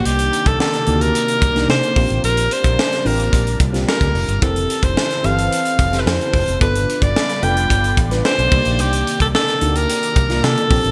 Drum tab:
CC |----------------|----------------|----------------|--------------x-|
HH |xxxx-xxxxxxx-xox|xxxx-xoxxxxx-xox|xxxx-xxxxxxx-xox|xxxx-xxxxxxx-x-x|
SD |----oo-----oo---|----oo-----oo---|----oo-----oo---|----oo-----oo---|
BD |---o------o---o-|---o----o-o--o--|o--o------o---o-|o--o----o-o---o-|

CC |----------------|
HH |xxxx-xxxxxxx-xox|
SD |----oo-----oo---|
BD |---o------o---o-|